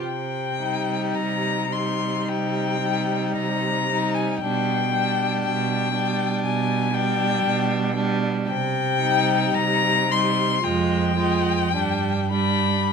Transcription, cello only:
\new Staff \with { instrumentName = "Cello" } { \clef bass \time 4/4 \key c \minor \tempo 4 = 56 c4 c4 c4 c4 | b,4 b,4 b,4 b,4 | c4 c4 f,4 g,4 | }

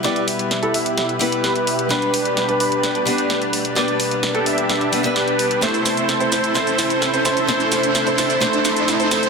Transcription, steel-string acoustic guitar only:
\new Staff \with { instrumentName = "Steel-string acoustic guitar" } { \time 4/4 \key e \minor \tempo 4 = 129 <g b e' b'>2~ <g b e' b'>8 <g b e' b'>4. | <g b d' b'>2~ <g b d' b'>8 <g b d' b'>4. | <g b d' b'>2~ <g b d' b'>8 <g b d' b'>16 <g b d' b'>4~ <g b d' b'>16 | <a c' e' c''>2 <a c' e' c''>2 |
<a c' e' c''>2 <a c' e' c''>2 | }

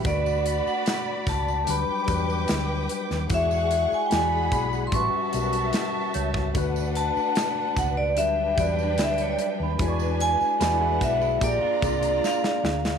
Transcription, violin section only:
\new Staff \with { instrumentName = "Violin section" } { \time 4/4 \key d \major \tempo 4 = 74 <fis' d'' b''>2 <b' g'' d'''>2 | <gis' fis'' cis'''>4 <gis' fis'' b''>4 <fis' e'' a''>2 | <d' b' fis''>2 <d' b' g''>2 | <d' b' gis''>4 <d' b' fis''>4 <f' d'' bes''>2 | }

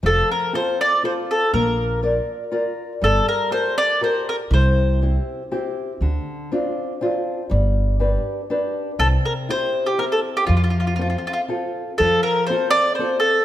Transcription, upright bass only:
\new Staff \with { instrumentName = "Upright bass" } { \clef bass \time 3/4 \key f \major \tempo 4 = 121 f,,8 r2 r8 | bes,,2 r4 | g,,8 r2 r8 | c,2 r4 |
d,8 r2 r8 | g,,2 r4 | c,8 r2 r8 | f,2 r4 |
f,8 r2 r8 | }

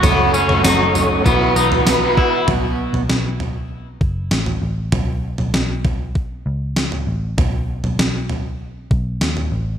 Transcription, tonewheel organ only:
\new Staff \with { instrumentName = "Tonewheel organ" } { \time 4/4 \key b \mixolydian \tempo 4 = 98 <a' cis'' fis'' cis'''>2 <fis' b' fis'' b''>2 | r1 | r1 | r1 | }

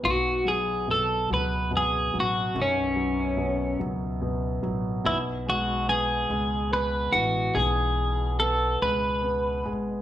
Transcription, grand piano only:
\new Staff \with { instrumentName = "Grand piano" } { \clef bass \time 6/8 \key b \mixolydian \tempo 4. = 48 b,8 fis8 b,8 fis8 b,8 fis8 | fis,8 fis8 b,8 fis8 b,8 fis8 | b,8 gis8 b8 gis8 b8 e8 | b,4 b8 gis8 b8 gis8 | }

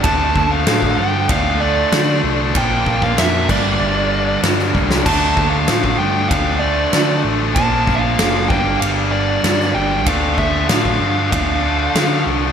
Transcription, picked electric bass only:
\new Staff \with { instrumentName = "Picked electric bass" } { \clef bass \time 4/4 \key d \minor \tempo 4 = 96 d,8 d,8 a,8 g,8 d,4 d8 c,8 | bes,,8 bes,,8 f,8 g,,8 g,,4 g,8 c,8 | d,8 d,8 a,8 g,8 d,4 d8 a,,8 | bes,,8 bes,,8 fis,,8 g,,8 g,,4 g,8 g,,8 |
d,8 d,8 a,8 g,8 d,4 d8 c,8 | }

